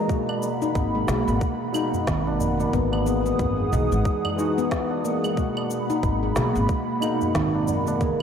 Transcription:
Already playing: E3 A#3 D#4 F#4 A#4
0.07 B2 G#3 A#3 F#4 F#5 B5, kick, cabasa
0.29 tabla na, claves
0.43 tabla tin, cabasa
0.62 D#4, tabla tin, cabasa
0.75 G#1, kick, cabasa
0.95 G#3
1.07 B1 B2 G#3 A#3 G#4, snare, cabasa
1.28 G#1, cabasa
1.41 kick, cabasa
1.72 B2 G#3 A#3 D#4, tabla tin, cabasa, claves
1.94 tabla ge, cabasa
2.07 G#1 D#3, kick, snare, cabasa
2.27 tabla na
2.40 tabla tin, tabla ge, cabasa
2.60 A#3, tabla na, cabasa
2.72 G#1 E3 G#3 B3 D#4 F#4 G#4 D#6, kick, cabasa
2.92 A#3, tabla na, claves
3.06 B3, tabla tin, cabasa
3.26 B3, tabla tin, cabasa
3.39 G#1, kick, tabla ge, cabasa
3.59 tabla ge
3.71 B1 E3 G#3 D#4 G#4, cabasa
3.92 G#1 G#3, cabasa
4.05 kick, tabla na, cabasa
4.25 tabla tin, tabla ge, claves
4.36 E3 G#3 D#4 F#4, tabla na, cabasa
4.58 B3, cabasa
4.71 kick, snare, cabasa
4.91 tabla na
5.04 A#3, tabla na, tabla tin, cabasa
5.24 G#3, cabasa, claves
5.35 B2 G#3 A#3 B5, kick, cabasa
5.39 F#4
5.57 tabla na, claves
5.71 tabla tin, cabasa
5.90 D#4, tabla tin, cabasa
6.03 G#1, kick, cabasa
6.23 G#3
6.35 B1 B2 G#3 A#3 G#4, snare, cabasa
6.55 G#1, cabasa
6.69 kick, cabasa
7.00 B2 G#3 A#3 D#4, tabla tin, cabasa, claves
7.04 D#4
7.21 tabla ge, cabasa
7.35 G#1 D#3, kick, snare, cabasa
7.55 tabla na
7.68 tabla tin, tabla ge, cabasa
7.87 A#3, tabla na, cabasa
7.98 F#1 E3 A#3 D#4 G#4 D#5 A#5, kick, cabasa

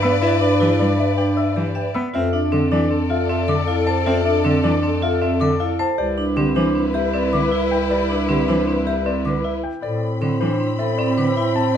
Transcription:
Already playing: G2 B4 D5
0.02 B3 B4 B5 E6
0.22 E4 B4 E5
0.41 D4 B4
0.60 E3 E4 G4 B4
0.79 G3 D4 B4 D5
0.98 B4 E5
1.17 D4 B4 G5
1.37 B4 D5 E5 E6
1.56 E3 G4 B4
1.75 B4 E5 G5
1.94 B3 B4 B5 E6
2.13 F2 C4 F4 A4 D5 E5
2.33 D4 E5
2.52 D3 C4 A4
2.71 E3 D4 D5
2.91 C4
3.10 F4 E5 F5
3.29 C4 E5
3.48 D3 A4 D6
3.67 E4 F5
3.87 C5 A5
4.06 C4 F4 E5
4.25 D4 E5
4.44 D3 C4 A4
4.63 E3 D4 D5
4.83 C4
5.02 F4 E5 F5
5.22 C4 E5
5.40 D3 A4 D6
5.60 E4 F5
5.79 C5 A5
5.98 C2 E4 G4 B4 D5
6.18 D4
6.36 D3 C4 G4
6.56 E3 D4 C5
6.75 C4
6.94 G4 E5
7.13 C4 D5
7.33 D3 B4 D6
7.52 E4 E5
7.71 G5
7.90 G4 D5
8.10 D4
8.29 D3 C4 G4
8.48 E3 D4 C5
8.68 C4
8.87 G4 E5
9.06 C4 D5
9.25 D3 B4 D6
9.44 E4 E5
9.64 G5
9.82 A2 C4 A4 C5 D5 B5
10.21 D3 C4 A4
10.40 E3 D4 C5
10.60 C4
10.79 A4 E5
10.98 C4 D5
11.18 D3 B4 D6
11.36 E4 E5
11.55 A5

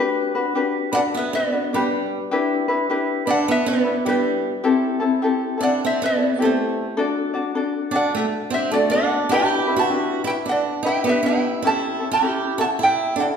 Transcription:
Already playing: G4
0.00 D4 F#4 B4
0.35 D4 F#4 B4
0.55 D4 F#4 G4 B4
0.92 D4 F#4 B4 D5 F#5
1.15 B3 E5
1.19 B4
1.33 B3 B4 D5
1.52 D4 F#4 B4
1.73 G3 D4 G4 B4
2.31 D4 E4 G4 B4
2.68 D4 E4 B4
2.90 D4 E4 G4 B4
3.26 D4 E4 B4 D5
3.31 F#5
3.48 B3 B4 E5
3.66 B3 B4 D5
3.83 D4 E4 B4
4.05 G3 D4 E4 G4 B4
4.09 G4
4.64 C4 E4 G4 A4
5.00 C4 E4 A4
5.22 C4 E4 G4 A4
5.58 C4 D4 E4 A4
5.63 D5 F#5
5.85 C4 C5 E5
6.02 B3 B4 D5
6.17 C4 E4 A4
6.39 A3 C4 E4 G4 A4
6.43 A4 C5
6.97 D4 F#4 A4 D5
7.34 D4 F#4 D5
7.55 D4 F#4 A4 D5
7.91 D4 F#4 D5
7.96 D5 F#5
8.15 A3 A4 E5
8.50 C4 D4 F#4 D5 E5
8.55 C5
8.71 A3 D4 F#4 A4 D5
8.90 D4 D5 F#5
9.29 D4 E4 G4 B4 B5
9.34 G5
9.67 D4 E4 B4
9.77 F#4 A5
9.81 F#5
9.89 D4 E4 G4 B4
10.24 E4 B4 G5
10.28 D4 E5
10.46 D4 F#5
10.51 D5
10.83 D4 E4 B4 G5
10.88 E5
11.04 B3 D4 E4 G4 B4
11.09 B4 E5
11.23 E4 G5
11.28 E5
11.62 C#4 E4 G4 A4
11.67 E5 A5
12.00 C#4 E4 A4
12.11 G4 G5 A#5
12.21 C#4 E4 G4 A4
12.30 B5
12.58 C#4 E4 F#4 A4 A5
12.62 F#5
12.79 E4
12.83 E5 G5
13.16 C#4 D4 E4 A4
13.20 D5 F#5

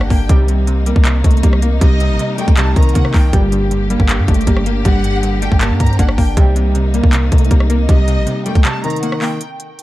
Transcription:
Already playing: G2 D3 G3 A#3 D4 G4
0.01 cross-stick
0.10 G1 A#3 G5, kick, open hi-hat
0.29 C2 D#2 C3 G3 D#4, kick, closed hi-hat
0.48 C3, closed hi-hat
0.67 C3, closed hi-hat
0.86 G3 A#3, closed hi-hat
0.96 C2, kick
1.05 C3, clap, closed hi-hat
1.24 C2 C3 A3, kick, closed hi-hat
1.31 closed hi-hat
1.37 closed hi-hat
1.43 C2 G3 A#3, kick, closed hi-hat
1.53 cross-stick
1.62 A#3, closed hi-hat
1.81 C2 C3 G3 D#5, kick, closed hi-hat
2.00 C3, closed hi-hat
2.10 A#1
2.19 C3, closed hi-hat
2.38 G3 A3 G5, closed hi-hat
2.48 C2, kick, closed hi-hat
2.57 C3 G3 A5, clap, closed hi-hat
2.76 C2 C3 D#3 A#5, kick, closed hi-hat
2.83 closed hi-hat
2.89 closed hi-hat
2.95 C3 A#3 F#5, kick, closed hi-hat
3.05 cross-stick
3.14 C2 A#3 G5, kick, clap, open hi-hat
3.33 G1 D2 G2 A#2 D3 G3 G4, kick, closed hi-hat
3.52 G2, closed hi-hat
3.71 G2, closed hi-hat
3.90 G3 A#3, closed hi-hat
4.00 G1, kick
4.09 G2, clap, closed hi-hat
4.19 G2
4.28 G1 G2 A3, kick, closed hi-hat
4.34 closed hi-hat
4.41 closed hi-hat
4.47 G1 G3 A#3, kick, closed hi-hat
4.57 cross-stick
4.66 A#3, closed hi-hat
4.85 G1 G2 G3 F#5, kick, closed hi-hat
5.04 G2, closed hi-hat
5.23 G2, closed hi-hat
5.42 G3 A3 G5, closed hi-hat
5.52 G1, kick
5.61 G2 A#3 A5, clap, closed hi-hat
5.71 G2
5.80 G2 A#5, kick, closed hi-hat
5.86 C4, closed hi-hat
5.93 closed hi-hat
5.99 G1 A#3 D4 F#5, kick, closed hi-hat
6.09 cross-stick
6.18 G1 A#3 G5, kick, open hi-hat
6.37 C2 D#2 C3 G3 A#3 D#4, kick, closed hi-hat
6.56 C3, closed hi-hat
6.75 C3, closed hi-hat
6.94 G3 A#3, closed hi-hat
7.03 C2, kick
7.13 C3, clap, closed hi-hat
7.32 C2 C3 A3, kick, closed hi-hat
7.38 closed hi-hat
7.45 closed hi-hat
7.51 C2 G3 A#3, kick, closed hi-hat
7.60 cross-stick
7.70 A#3, closed hi-hat
7.89 C2 C3 G3 D#5, kick, closed hi-hat
8.08 C3, closed hi-hat
8.17 A#1
8.27 C3, closed hi-hat
8.46 G3 A3 G5, closed hi-hat
8.55 C2, kick, closed hi-hat
8.65 C3 G3 A5, clap, closed hi-hat
8.84 C3 D#3 A#5, closed hi-hat
8.90 closed hi-hat
8.96 closed hi-hat
9.03 A#3 F#5, closed hi-hat
9.12 cross-stick
9.22 A#3 G5, clap, open hi-hat
9.41 closed hi-hat
9.60 closed hi-hat
9.79 closed hi-hat

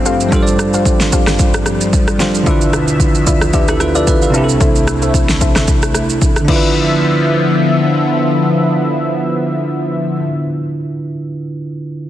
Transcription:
Already playing: G2 F3 G3 A3 C4 D4 F4 A4 C5
0.05 G4 A4 C5 F5, shaker
0.20 shaker
0.29 G3 D4 F4 G4 A4 C5 F5, kick, shaker
0.34 A4 C5
0.43 D5
0.47 shaker
0.59 cross-stick, shaker
0.73 G4 A4 C5 F5, shaker
0.85 kick, shaker
1.00 snare, shaker
1.12 G4 A4 C5 F5, kick, shaker
1.27 cross-stick, snare, shaker
1.39 kick, shaker
1.54 cross-stick, shaker
1.66 cross-stick, shaker
1.81 shaker
1.93 kick, shaker
2.08 cross-stick, shaker
2.18 G3 D4 F4 G4 A4 C5 F5, snare, shaker
2.35 shaker
2.43 D2 B2 D3 D4 E4 F4 B4 D5 E5, kick, shaker
2.49 F4 B4
2.61 shaker
2.73 cross-stick, shaker
2.88 shaker
3.00 kick, shaker
3.15 shaker
3.27 F4 B4 D5 E5, kick, shaker
3.41 cross-stick, shaker
3.53 D4 F4 G4 B4 D5 E5, kick, shaker
3.68 E4 A4, cross-stick, shaker
3.80 F4 B4, cross-stick, shaker
3.95 F4 A4 B4 D5 E5, shaker
4.07 B4 E5, kick, shaker
4.22 B4 F5, shaker
4.30 C2 C3 A3 C4 D4 E4 A4 C5 E5, shaker
4.36 E4 G4
4.44 A4
4.49 shaker
4.60 A4 C5 E5, kick, shaker
4.76 shaker
4.88 cross-stick, shaker
5.02 A4 C5 E5, shaker
5.14 kick, shaker
5.29 snare, shaker
5.41 A4 C5 E5, kick, shaker
5.56 cross-stick, snare, shaker
5.68 kick, shaker
5.82 cross-stick, shaker
5.95 cross-stick, shaker
6.10 shaker
6.22 kick, shaker
6.36 cross-stick, shaker
6.41 D3 D4
6.48 D3 F3 B3 E4 F4 B4 D5 E5, kick, crash
6.52 F4 B4

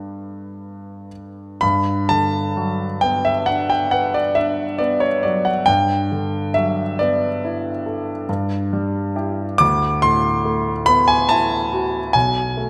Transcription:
Already playing: G2 A3 B3 D4 G4 B4 E5 G5 B5
1.61 G2 B5
2.09 D3 A5
2.57 F#3
3.01 B3 G5
3.25 E5
3.46 D4 F#5
3.70 G5
3.91 B4 F#5
4.14 D5
4.35 D4 E5
4.78 B3 D5
5.00 C#5
5.23 F#3 D5
5.45 F#5
5.66 G2 G5
6.12 D3
6.54 F#3 E5
6.99 B3 D5
7.45 E4
7.86 A4
8.29 G2
8.73 G3
9.16 E4 G4
9.58 D2 D6
10.02 A2 C6
10.45 A3
10.86 B3 B5
11.08 G#5
11.29 E4 A5
11.73 F#4
12.13 B1 G#5
12.57 A3

